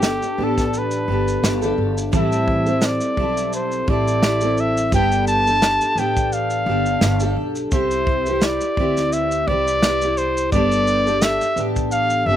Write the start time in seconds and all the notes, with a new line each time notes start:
Already playing: G1 D4 G4 A4
0.02 snare, shaker
0.22 shaker
0.38 A1 B3 D4 G4 A4
0.44 A4
0.58 kick, snare, shaker
0.73 shaker
0.78 B4
0.91 shaker
1.08 G1 B3 D4 G4 A4
1.28 shaker
1.43 G1 B3 D4 G4 A4, snare, shaker
1.61 D4 G4 A4, shaker
1.78 G1
1.98 shaker
2.12 A1 A2 E3 G3 C4 E4 A4, kick, shaker
2.17 E5
2.32 shaker
2.48 kick
2.66 G3 C4 E4 A4, shaker
2.81 snare, shaker
2.85 D5
3.01 shaker
3.17 B1 G3 C4 E4 A4, kick
3.37 shaker
3.53 C5, shaker
3.72 shaker
3.87 A1 G3 C4 E4 A4 D5, kick
4.08 shaker
4.23 G3 C4 E4 A4, snare, shaker
4.41 G3 C4 E4 A4, shaker
4.58 E5, shaker
4.77 shaker
4.92 G1 G3 B3 D4 G4 A4 G5, kick, shaker
5.12 shaker
5.27 A5, shaker
5.46 D4 G4 A4, shaker
5.62 snare, shaker
5.81 shaker
5.96 A1 B3 D4 G4 A4 G5, shaker
6.17 kick, shaker
6.32 F5, shaker
6.50 shaker
6.66 G1 B3 D4 G4 A4
6.86 shaker
7.01 G1 B3 D4 G4 A4, snare, shaker
7.20 G4 A4, shaker
7.25 D4
7.36 B1
7.55 shaker
7.71 C2 C4 E4 G4 C5, kick, shaker
7.91 shaker
8.07 kick
8.26 E4 G4 B4, shaker
8.41 D5, snare, shaker
8.61 shaker
8.77 D2 C4 E4 G4 B4, kick
8.97 snare, shaker
9.13 E5, shaker
9.31 shaker
9.47 C2 C4 E4 G4 B4 D5, kick
9.68 shaker
9.83 C4 E4 G4, snare, shaker
9.87 B4
10.02 G4, shaker
10.06 E4
10.17 C5, shaker
10.37 shaker
10.52 G1 G3 B3 D4 G4 A4 D5, kick, shaker
10.72 shaker
10.87 shaker
11.06 D4 G4 A4, shaker
11.22 E5, snare, shaker
11.41 shaker
11.56 A1 B3 D4 G4 A4, shaker
11.76 kick, shaker
11.92 F5, shaker
12.10 shaker
12.26 G1 B3 D4 G4 A4 E5